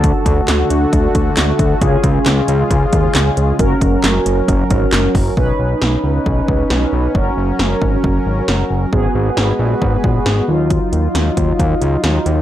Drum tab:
HH |xxxxxxxx|xxxxxxxx|xxxxxxxo|--------|
CP |--x---x-|--x---x-|--x---x-|--------|
SD |--o---o-|--o---o-|--o---o-|--o---o-|
BD |oo--oo-o|oo--oo--|oo--oo-o|o---oo--|

HH |--------|--------|xxxxxxxx|
CP |--------|--------|--------|
SD |--o---o-|--o---o-|--o---o-|
BD |o--oo---|o---oo--|o--oo---|